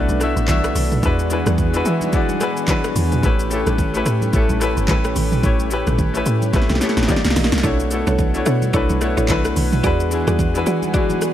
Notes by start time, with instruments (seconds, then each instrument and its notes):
Already playing: grand piano A3 D4 E4 F#4 B4 C#5 D5, analog synth pad A3 B3 D4
0.09 log drum bass B1, high conga, shaker
0.20 grand piano A3 D4 E4 F#4 E5, cross-stick, shaker
0.36 log drum bass A1, shaker
0.47 log drum bass B1, grand piano A3 D4 E4 F#4 E5, kick, clap, high conga, low conga, shaker
0.64 cross-stick, shaker
0.75 log drum bass B1, open hi-hat, low conga, shaker
0.92 mid tom, high conga, shaker
1.02 log drum bass E2, analog synth pad E3 F#4 G#4, grand piano G#3 D4 E4 F#4 B4, kick, shaker
1.19 shaker
1.30 grand piano G#3 D4 E4 F#4 B4, shaker
1.46 log drum bass E2, cross-stick, high conga, shaker
1.58 kick, low conga, shaker
1.73 grand piano G#3 D4 E4 F#4 B4, shaker
1.85 log drum bass E3, grand piano E5, shaker
2.01 high conga, shaker
2.12 grand piano G#3 D4 E4 F#4 D5 F#5, kick, shaker
2.29 high conga, shaker
2.40 grand piano G#3 D4 E4 F#4 B4 G#5, cross-stick, shaker
2.57 shaker
2.67 grand piano F#3 D4 E4 F#4 B4 B5, kick, clap, high conga, low conga, shaker
2.74 grand piano G#3
2.84 cross-stick, shaker
2.95 log drum bass E2, open hi-hat, low conga, shaker
3.12 mid tom, high conga, shaker
3.22 log drum bass A1, grand piano A3 C#4 E4 G4 B4, analog synth pad A3 C#4 G4, kick, shaker
3.39 shaker
3.50 grand piano A3 C#4 E4 G4 A4, shaker
3.67 log drum bass A1, cross-stick, high conga, shaker
3.78 kick, low conga, shaker
3.94 grand piano A3 C#4 E4 G4 B4, shaker
4.06 log drum bass A2, cross-stick, shaker
4.22 high conga, shaker
4.33 log drum bass A1, grand piano A3 C#4 E4 G4 A4, kick, shaker
4.49 log drum bass A1, high conga, shaker
4.60 grand piano A3 C#4 E4 G4 B4, cross-stick, shaker
4.77 log drum bass G1, shaker
4.87 log drum bass A1, grand piano A3 C#4 E4 G4 B4, kick, clap, high conga, low conga, shaker
5.04 cross-stick, shaker
5.15 log drum bass A1, open hi-hat, low conga, shaker
5.32 mid tom, high conga, shaker
5.43 log drum bass A1, grand piano A3 C#4 E4 G4 C#5, kick, shaker
5.59 high conga, shaker
5.70 grand piano A3 C#4 E4 G4 B4, shaker
5.87 log drum bass A1, cross-stick, mid tom, high conga, shaker
5.98 kick, low conga, shaker
6.14 grand piano A3 C#4 E4 G4 B4, shaker
6.26 log drum bass A2, shaker
6.42 high conga, shaker
6.53 log drum bass A1, grand piano A3 C#4 E4 G4 B4, kick, snare, shaker
6.62 snare
6.69 log drum bass B1, snare, high conga, shaker
6.75 snare
6.80 grand piano A3 C#4 E4 G4 A4, snare, shaker
6.89 snare
6.97 log drum bass A1, snare, shaker
7.03 snare
7.08 analog synth pad C3 A#3 D#4 F4, grand piano A#3 D#4 F4 G4 D5, kick, snare, high conga, low conga, shaker
7.16 snare
7.25 log drum bass C2, snare, shaker
7.30 snare
7.36 log drum bass A#1, snare, open hi-hat, low conga, shaker
7.44 snare
7.52 log drum bass C2, snare, high conga, shaker
7.58 snare
7.63 log drum bass B1, grand piano A3 D4 E4 F#4 C#5, analog synth pad A3 B3, synth pluck D4 E4 A4 C#5, kick, shaker
7.80 shaker
7.91 grand piano A3 D4 E4 F#4 A4, shaker
8.07 log drum bass B1, synth pluck D4 E4 A4 C#5, cross-stick, high conga, shaker
8.19 kick, low conga, shaker
8.34 grand piano A3 D4 E4 F#4 C#5, shaker
8.46 log drum bass B2, synth pluck D4 E4 A4 C#5, cross-stick, shaker
8.62 high conga, shaker
8.73 log drum bass B1, grand piano A3 D4 E4 F#4 B4, synth pluck D4 E4 A4 C#5, kick, shaker
8.90 log drum bass B1, high conga, shaker
9.01 grand piano A3 D4 E4 F#4 C#5, cross-stick, shaker
9.17 log drum bass A1, synth pluck D4 E4 A4 C#5, shaker
9.28 log drum bass B1, grand piano A3 D4 E4 F#4 B4, kick, clap, high conga, low conga, shaker
9.45 cross-stick, shaker
9.56 log drum bass B1, open hi-hat, low conga, shaker
9.72 mid tom, high conga, shaker
9.83 log drum bass E2, analog synth pad E3 F#4 G#4, grand piano G#3 D4 E4 F#4 B4, synth pluck F#4 G#4 D5, kick, shaker
10.00 shaker
10.11 grand piano G#3 D4 E4 F#4 G#4, shaker
10.27 log drum bass E2, synth pluck F#4 G#4 D5, cross-stick, high conga, shaker
10.39 kick, low conga, shaker
10.54 grand piano G#3 D4 E4 F#4 B4, shaker
10.66 log drum bass E3, synth pluck F#4 G#4 D5, shaker
10.82 high conga, shaker
10.93 grand piano G#3 D4 E4 F#4 G#4, synth pluck F#4 G#4 D5, kick, shaker
11.10 high conga, shaker
11.22 cross-stick, shaker